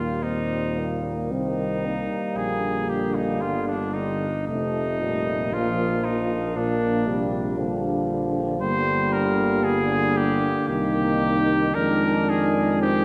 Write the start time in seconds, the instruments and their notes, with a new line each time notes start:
Already playing: tuba D#2, trombone A#2, french horn section G3, euphonium A#3, cornet F4
0.22 trombone A#2, french horn section G3, euphonium C4, cornet D#4
0.79 euphonium A#3
1.31 tuba C2, trombone D#3, euphonium C4, cornet D#4
1.85 euphonium A#3
2.36 tuba A#1, trombone D3, cornet G#4
2.89 cornet G4
3.15 cornet D#4
3.41 tuba G1, cornet F4
3.67 cornet D4
3.94 cornet D#4
4.46 tuba F1, trombone C3, euphonium A3, french horn section A3, cornet D#4
5.01 trombone A#2, euphonium G3
5.53 tuba A#1, euphonium F3, french horn section A#3, cornet F4
6.05 cornet D#4
6.56 trombone A#2, euphonium A#3, french horn section A#3, cornet D4
7.07 trombone C3, euphonium G3
7.58 trombone D3, euphonium F3, french horn section G3
8.60 tuba G1, trombone D3, euphonium G3, french horn section A#3, cornet C5
9.13 cornet A#4
9.64 cornet G#4
10.17 cornet G4
10.68 tuba C2, trombone D#3, euphonium D#4, cornet G4
11.75 tuba F2, french horn section G#3, euphonium D4, cornet A#4
12.29 cornet G#4
12.81 euphonium C4, cornet G4